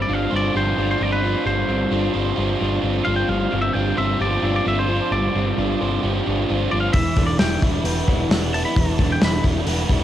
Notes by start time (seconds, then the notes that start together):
Already playing: G2 G3 C4
0.02 D5
0.08 G1 D4 F4
0.13 F5
0.30 G1 C4 C5
0.36 D5
0.54 G1 F4 G4 C5
0.77 G1 D4 F4
0.91 C5
0.98 G1 C4 F4
1.02 D5
1.12 B4
1.22 F4 C5
1.45 G1 G2 G3 C5
1.68 G1 G3 C4
1.91 G1 D4 F4
2.13 G1 C4 C5
2.36 G1 F4 G4
2.59 G1 D4 F4
2.82 G1 C4 F4
3.05 G1 F4 C5 F5
3.16 G5
3.28 G1 G2 G3 F5
3.51 G1 G3 C4
3.62 E5
3.73 G1 D4 F4 G5
3.97 G1 C4 C5 E5
4.19 G1 F4 G4 D5
4.42 G1 D4 F4
4.56 D5
4.64 G1 C4 F4 E5
4.79 C5
4.88 F4 C5
5.11 G1 G2 G3 D5
5.35 G1 G3 C4
5.57 G1 D4 F4
5.81 G1 C4 C5
6.02 G1 F4 G4
6.26 G1 D4 F4
6.48 G1 C4 F4
6.71 G1 F4 C5 D5
6.80 F5
6.93 E1 E3 E5, kick, open hi-hat
7.16 E1 D3 D4, kick, open hi-hat
7.27 D5
7.39 E1 G3 E4 G5, snare, open hi-hat
7.62 E1 D4 E4, kick, open hi-hat
7.84 E1 B3 B4, open hi-hat
8.07 E1 G3 E4, kick, open hi-hat
8.29 E1 B3 D4, snare, open hi-hat
8.54 E4 A5, open hi-hat
8.65 B5
8.75 E1 E3 A5, kick, open hi-hat
8.99 E1 D3 D4, kick, open hi-hat
9.12 G5
9.21 E1 G3 E4 B5, snare, open hi-hat
9.43 E1 D4 E4, kick, open hi-hat
9.67 E1 B3 B4, open hi-hat
9.89 E1 G3 E4, kick, open hi-hat